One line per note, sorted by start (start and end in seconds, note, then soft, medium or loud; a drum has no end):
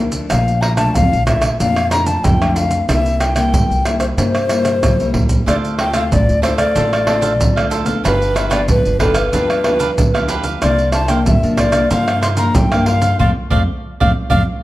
0.00 0.21 D2 medium
0.00 0.28 D3 medium
0.00 0.10 F3 medium
0.00 0.10 A#3 medium
0.00 0.11 D4 medium
0.12 0.73 F3 medium
0.12 0.73 A3 medium
0.12 0.74 D4 medium
0.12 pandeiro medium
0.12 maracas medium
0.30 0.96 A#1 medium
0.30 0.92 A#2 medium
0.30 0.63 F5 loud
0.30 pandeiro medium
0.30 tamborim medium
0.30 maracas medium
0.30 surdo medium
0.48 pandeiro soft
0.48 maracas soft
0.61 0.76 A#5 loud
0.61 pandeiro medium
0.61 tamborim medium
0.77 1.22 F3 medium
0.77 1.22 A3 medium
0.77 1.22 D4 medium
0.77 0.96 A5 loud
0.77 pandeiro medium
0.77 tamborim medium
0.77 maracas medium
0.95 1.09 F2 medium
0.95 1.57 F2 medium
0.95 1.26 F5 medium
0.95 pandeiro medium
0.95 maracas medium
0.95 surdo loud
1.13 1.53 A#1 medium
1.13 pandeiro soft
1.13 maracas soft
1.26 1.46 F3 medium
1.26 1.47 A3 medium
1.26 1.47 D4 medium
1.26 1.57 E5 medium
1.26 pandeiro medium
1.26 tamborim medium
1.26 maracas medium
1.26 surdo medium
1.42 pandeiro medium
1.42 tamborim medium
1.42 maracas medium
1.60 2.15 F2 medium
1.60 2.22 A#2 medium
1.60 1.79 F3 medium
1.60 1.79 A3 medium
1.60 1.80 D4 medium
1.60 1.90 F5 medium
1.60 pandeiro medium
1.60 maracas medium
1.60 surdo medium
1.76 pandeiro soft
1.76 tamborim medium
1.76 maracas soft
1.91 2.35 F3 medium
1.91 2.35 A3 medium
1.91 2.36 D4 medium
1.91 2.08 A#5 medium
1.91 pandeiro medium
1.91 tamborim medium
1.91 maracas medium
2.06 2.25 A5 medium
2.06 pandeiro medium
2.06 maracas medium
2.24 2.79 F2 loud
2.24 2.86 F2 soft
2.24 2.50 G5 medium
2.24 pandeiro medium
2.24 maracas medium
2.24 surdo loud
2.41 2.84 F3 medium
2.41 2.84 A3 medium
2.41 2.85 D4 medium
2.41 pandeiro soft
2.41 tamborim medium
2.41 maracas soft
2.50 2.58 G5 medium
2.56 2.89 F5 medium
2.56 pandeiro medium
2.56 maracas medium
2.71 pandeiro medium
2.71 maracas medium
2.89 3.55 C2 medium
2.89 3.50 C3 medium
2.89 3.19 G3 medium
2.89 3.20 A#3 medium
2.89 3.20 E4 medium
2.89 3.22 E5 medium
2.89 pandeiro medium
2.89 tamborim medium
2.89 maracas medium
2.89 surdo medium
3.06 pandeiro soft
3.06 maracas soft
3.20 3.36 G5 medium
3.20 pandeiro medium
3.20 tamborim medium
3.20 maracas medium
3.35 3.79 G3 medium
3.35 3.80 A#3 medium
3.35 3.80 E4 medium
3.35 3.88 G5 medium
3.35 pandeiro medium
3.35 tamborim medium
3.35 maracas medium
3.53 4.15 G2 medium
3.53 3.67 G2 medium
3.53 pandeiro medium
3.53 maracas medium
3.53 surdo loud
3.70 4.11 C2 medium
3.70 pandeiro soft
3.70 maracas soft
3.84 4.12 G3 soft
3.84 4.12 A#3 medium
3.84 4.13 E4 medium
3.84 4.00 E5 medium
3.84 pandeiro medium
3.84 tamborim medium
3.84 maracas medium
4.00 4.06 C5 medium
4.00 pandeiro medium
4.00 tamborim medium
4.00 maracas medium
4.18 4.82 G2 medium
4.18 4.79 C3 medium
4.18 4.37 G3 medium
4.18 4.37 A#3 medium
4.18 4.37 E4 medium
4.18 5.11 C5 medium
4.18 pandeiro medium
4.18 maracas medium
4.18 surdo medium
4.35 pandeiro soft
4.35 tamborim medium
4.35 maracas soft
4.49 4.80 G3 medium
4.49 4.80 A#3 medium
4.49 4.81 E4 medium
4.49 pandeiro medium
4.49 tamborim medium
4.49 maracas medium
4.65 pandeiro medium
4.65 tamborim medium
4.65 maracas medium
4.83 5.12 C2 medium
4.83 5.44 G2 medium
4.83 pandeiro medium
4.83 tamborim medium
4.83 maracas medium
4.83 surdo loud
5.00 5.43 G3 medium
5.00 5.43 A#3 medium
5.00 5.43 E4 medium
5.00 pandeiro soft
5.00 maracas soft
5.14 5.43 D2 medium
5.14 pandeiro medium
5.14 surdo loud
5.29 pandeiro medium
5.29 maracas medium
5.29 surdo medium
5.46 6.14 D2 medium
5.46 6.08 D3 medium
5.46 5.90 A3 medium
5.46 5.91 C4 medium
5.46 5.77 D4 medium
5.46 5.91 F4 medium
5.46 5.78 A4 medium
5.46 5.78 C5 medium
5.46 5.55 D5 loud
5.46 5.78 F5 medium
5.46 pandeiro medium
5.46 tamborim medium
5.46 maracas medium
5.46 surdo medium
5.65 pandeiro soft
5.65 maracas soft
5.78 5.93 D4 medium
5.78 5.93 A4 medium
5.78 5.93 C5 medium
5.78 5.94 F5 medium
5.78 5.95 G5 loud
5.78 pandeiro medium
5.78 tamborim medium
5.93 6.38 A3 medium
5.93 6.38 C4 medium
5.93 6.04 D4 medium
5.93 6.38 F4 medium
5.93 6.04 A4 medium
5.93 6.04 C5 medium
5.93 6.04 F5 medium
5.93 6.10 F5 medium
5.93 pandeiro medium
5.93 tamborim medium
5.93 maracas medium
6.12 6.26 A1 medium
6.12 6.73 A2 medium
6.12 6.42 D5 medium
6.12 pandeiro medium
6.12 maracas medium
6.12 surdo loud
6.29 6.70 D2 medium
6.29 pandeiro soft
6.29 maracas soft
6.42 6.62 A3 medium
6.42 6.62 C4 medium
6.42 6.58 D4 medium
6.42 6.63 F4 medium
6.42 6.58 A4 medium
6.42 6.57 C5 medium
6.42 6.57 F5 medium
6.42 pandeiro medium
6.42 tamborim medium
6.42 maracas medium
6.58 6.74 A4 soft
6.58 6.74 C5 soft
6.58 7.68 D5 medium
6.58 6.74 F5 soft
6.58 pandeiro medium
6.58 tamborim medium
6.58 maracas medium
6.75 7.41 A1 medium
6.75 7.37 D3 medium
6.75 7.03 A3 medium
6.75 7.03 C4 medium
6.75 6.90 D4 medium
6.75 7.04 F4 medium
6.75 6.91 A4 medium
6.75 6.91 C5 medium
6.75 6.91 F5 medium
6.75 pandeiro medium
6.75 maracas medium
6.75 surdo medium
6.93 7.06 A4 soft
6.93 7.06 C5 soft
6.93 7.07 F5 soft
6.93 pandeiro soft
6.93 tamborim medium
6.93 maracas soft
7.07 7.38 A3 medium
7.07 7.38 C4 medium
7.07 7.20 D4 soft
7.07 7.38 F4 medium
7.07 7.20 A4 medium
7.07 7.21 C5 medium
7.07 7.21 F5 medium
7.07 pandeiro medium
7.07 tamborim medium
7.21 7.32 D4 medium
7.21 7.32 A4 medium
7.21 7.32 C5 medium
7.21 7.32 F5 medium
7.21 pandeiro medium
7.21 maracas medium
7.41 7.95 D2 loud
7.41 8.02 A2 medium
7.41 pandeiro medium
7.41 maracas medium
7.41 surdo loud
7.56 7.84 A3 medium
7.56 7.84 C4 medium
7.56 7.84 F4 medium
7.56 7.70 A4 soft
7.56 7.70 C5 soft
7.56 7.70 F5 medium
7.56 pandeiro soft
7.56 tamborim medium
7.56 maracas soft
7.70 7.86 D4 medium
7.70 7.86 A4 medium
7.70 7.85 C5 medium
7.70 7.85 F5 medium
7.70 pandeiro medium
7.70 maracas medium
7.86 8.47 F3 medium
7.86 8.47 B3 medium
7.86 8.47 D4 medium
7.86 8.03 A4 soft
7.86 8.02 C5 soft
7.86 8.02 F5 soft
7.86 pandeiro medium
7.86 maracas medium
8.04 8.71 G1 medium
8.04 8.66 G2 medium
8.04 8.33 D4 medium
8.04 8.34 G4 medium
8.04 8.34 B4 medium
8.04 8.39 B4 medium
8.04 8.34 F5 medium
8.04 pandeiro medium
8.04 tamborim medium
8.04 maracas medium
8.04 surdo medium
8.22 pandeiro soft
8.22 maracas soft
8.34 8.49 D4 medium
8.34 8.49 G4 soft
8.34 8.49 B4 medium
8.34 8.54 E5 loud
8.34 8.50 F5 medium
8.34 pandeiro medium
8.34 tamborim medium
8.34 maracas medium
8.50 8.95 F3 medium
8.50 8.95 B3 medium
8.50 8.60 D4 medium
8.50 8.95 D4 medium
8.50 8.61 G4 medium
8.50 8.61 B4 medium
8.50 8.69 D5 medium
8.50 8.61 F5 medium
8.50 pandeiro medium
8.50 tamborim medium
8.50 maracas medium
8.68 8.83 D2 medium
8.68 9.31 D3 medium
8.68 9.00 B4 medium
8.68 pandeiro medium
8.68 maracas medium
8.68 surdo loud
8.85 9.27 G1 medium
8.85 pandeiro soft
8.85 maracas soft
8.99 9.20 F3 medium
8.99 9.20 B3 medium
8.99 9.15 D4 medium
8.99 9.20 D4 medium
8.99 9.15 G4 medium
8.99 9.18 A4 medium
8.99 9.15 B4 medium
8.99 9.14 F5 medium
8.99 pandeiro medium
8.99 tamborim medium
8.99 surdo medium
9.14 9.32 G4 soft
9.14 9.32 B4 soft
9.14 10.30 B4 medium
9.14 9.31 F5 medium
9.14 pandeiro medium
9.14 tamborim medium
9.14 maracas medium
9.33 9.89 D2 medium
9.33 9.95 G2 medium
9.33 9.61 F3 medium
9.33 9.61 B3 medium
9.33 9.48 D4 medium
9.33 9.61 D4 medium
9.33 9.48 G4 medium
9.33 9.48 B4 medium
9.33 9.48 F5 medium
9.33 pandeiro medium
9.33 maracas medium
9.33 surdo medium
9.50 9.63 G4 soft
9.50 9.63 B4 soft
9.50 9.64 F5 soft
9.50 pandeiro soft
9.50 tamborim medium
9.50 maracas soft
9.64 9.96 F3 medium
9.64 9.96 B3 medium
9.64 9.78 D4 soft
9.64 9.96 D4 medium
9.64 9.78 G4 soft
9.64 9.78 B4 medium
9.64 9.79 F5 medium
9.64 pandeiro medium
9.64 tamborim medium
9.79 9.90 D4 medium
9.79 9.90 G4 medium
9.79 9.90 B4 medium
9.79 9.90 F5 medium
9.79 pandeiro medium
9.79 maracas medium
9.98 10.53 D2 medium
9.98 10.59 D3 soft
9.98 pandeiro medium
9.98 maracas medium
9.98 surdo loud
10.14 10.57 F3 medium
10.14 10.58 B3 medium
10.14 10.58 D4 medium
10.14 10.28 G4 soft
10.14 10.28 B4 soft
10.14 10.29 F5 soft
10.14 pandeiro soft
10.14 tamborim medium
10.14 maracas soft
10.28 10.44 D4 medium
10.28 10.45 G4 medium
10.28 10.44 B4 medium
10.28 10.43 F5 medium
10.28 pandeiro medium
10.28 maracas medium
10.44 10.61 G4 soft
10.44 10.61 B4 soft
10.44 10.60 F5 soft
10.44 pandeiro medium
10.44 maracas medium
10.62 11.28 C2 medium
10.62 11.23 C3 medium
10.62 10.93 F3 medium
10.62 10.93 A#3 medium
10.62 10.93 D4 medium
10.62 10.92 A#4 medium
10.62 10.93 C5 medium
10.62 10.92 D5 medium
10.62 10.94 F5 medium
10.62 pandeiro medium
10.62 tamborim medium
10.62 maracas medium
10.62 surdo medium
10.79 pandeiro soft
10.79 maracas soft
10.92 11.08 A#4 soft
10.92 11.08 C5 medium
10.92 11.09 F5 medium
10.92 11.10 A5 medium
10.92 pandeiro medium
10.92 tamborim medium
10.92 maracas medium
11.08 11.37 F3 medium
11.08 11.37 A#3 medium
11.08 11.37 D4 medium
11.08 11.19 A#4 medium
11.08 11.19 C5 medium
11.08 11.19 F5 medium
11.08 11.26 G5 medium
11.08 pandeiro medium
11.08 tamborim medium
11.08 maracas medium
11.26 11.88 G2 medium
11.26 11.40 G2 medium
11.26 11.60 E5 medium
11.26 pandeiro medium
11.26 maracas medium
11.26 surdo loud
11.43 11.85 C2 medium
11.43 11.70 F3 medium
11.43 11.70 A#3 medium
11.43 11.70 D4 medium
11.43 pandeiro soft
11.43 maracas soft
11.57 11.73 A#4 medium
11.57 11.73 C5 medium
11.57 11.91 D5 medium
11.57 11.71 F5 medium
11.57 pandeiro medium
11.57 tamborim medium
11.57 maracas medium
11.57 surdo medium
11.72 11.84 F3 medium
11.72 11.85 A#3 medium
11.72 11.85 D4 medium
11.72 11.89 C5 soft
11.72 11.89 F5 medium
11.72 pandeiro medium
11.72 tamborim medium
11.72 maracas medium
11.90 12.46 G2 medium
11.90 12.52 C3 medium
11.90 12.21 F3 medium
11.90 12.21 A#3 medium
11.90 12.22 D4 medium
11.90 12.06 A#4 medium
11.90 12.06 C5 medium
11.90 12.06 F5 medium
11.90 12.22 F5 medium
11.90 pandeiro medium
11.90 maracas medium
11.90 surdo medium
12.07 12.21 C5 soft
12.07 12.22 F5 soft
12.07 pandeiro soft
12.07 tamborim medium
12.07 maracas soft
12.21 12.36 A#4 soft
12.21 12.37 C5 soft
12.21 12.37 F5 medium
12.21 12.28 C6 medium
12.21 pandeiro medium
12.21 tamborim medium
12.21 maracas medium
12.37 12.65 F3 medium
12.37 12.65 A#3 medium
12.37 12.66 D4 medium
12.37 12.47 A#4 medium
12.37 12.48 C5 medium
12.37 12.48 F5 medium
12.37 12.57 A#5 medium
12.37 pandeiro medium
12.37 maracas medium
12.55 13.16 G2 medium
12.55 13.10 G2 medium
12.55 12.88 G5 medium
12.55 pandeiro medium
12.55 maracas medium
12.55 surdo loud
12.72 13.15 F3 medium
12.72 13.15 A#3 medium
12.72 13.15 D4 medium
12.72 12.86 C5 soft
12.72 12.87 F5 medium
12.72 pandeiro soft
12.72 tamborim medium
12.72 maracas soft
12.86 13.02 A#4 medium
12.86 13.01 C5 medium
12.86 13.19 F5 medium
12.86 13.00 F5 medium
12.86 pandeiro medium
13.01 13.18 C5 soft
13.01 13.17 F5 soft
13.01 pandeiro medium
13.01 maracas medium
13.19 13.32 F2 loud
13.19 13.30 F3 medium
13.19 13.30 A3 medium
13.19 13.30 C4 loud
13.19 13.30 C5 medium
13.19 13.30 D5 medium
13.19 13.30 F5 medium
13.19 surdo medium
13.50 13.64 F2 medium
13.50 13.62 F3 loud
13.50 13.61 A3 medium
13.50 13.62 C4 loud
13.50 13.62 C5 medium
13.50 13.62 D5 loud
13.50 13.62 F5 medium
13.50 surdo loud
14.00 14.13 F2 medium
14.00 14.11 F3 medium
14.00 14.11 A3 medium
14.00 14.11 C4 medium
14.00 14.11 C5 medium
14.00 14.11 D5 medium
14.00 14.11 F5 medium
14.00 surdo loud
14.30 14.44 F2 medium
14.30 14.41 F3 medium
14.30 14.41 A3 medium
14.30 14.41 C4 medium
14.30 14.41 C5 medium
14.30 14.41 D5 medium
14.30 14.42 F5 medium
14.30 14.41 F5 medium
14.30 surdo loud